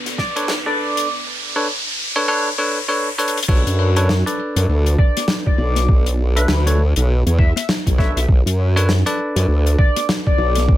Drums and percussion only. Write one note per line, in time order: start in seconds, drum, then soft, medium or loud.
0.06 snare soft
0.06 closed hi-hat medium
0.18 kick loud
0.18 snare soft
0.37 closed hi-hat medium
0.48 snare loud
0.97 closed hi-hat medium
3.19 closed hi-hat medium
3.28 closed hi-hat medium
3.37 closed hi-hat medium
3.43 closed hi-hat medium
3.48 kick loud
3.48 crash medium
3.55 snare soft
3.67 closed hi-hat medium
3.96 closed hi-hat medium
4.09 snare loud
4.27 closed hi-hat medium
4.56 closed hi-hat medium
4.86 closed hi-hat medium
4.98 kick loud
5.17 snare soft
5.17 closed hi-hat medium
5.28 snare loud
5.46 kick medium
5.76 snare soft
5.76 closed hi-hat medium
5.89 kick loud
6.06 closed hi-hat medium
6.37 closed hi-hat medium
6.48 snare loud
6.67 closed hi-hat medium
6.96 closed hi-hat medium
7.27 closed hi-hat medium
7.39 kick loud
7.56 snare soft
7.56 closed hi-hat medium
7.69 snare loud
7.87 kick medium
7.87 closed hi-hat medium
7.98 kick loud
7.98 snare soft
8.17 closed hi-hat medium
8.29 kick loud
8.47 closed hi-hat medium
8.77 closed hi-hat medium
8.89 snare loud
9.07 closed hi-hat medium
9.36 closed hi-hat medium
9.67 closed hi-hat medium
9.79 kick loud
9.96 snare soft
9.96 closed hi-hat medium
10.09 snare loud
10.27 kick medium
10.55 snare soft
10.55 closed hi-hat medium
10.69 kick loud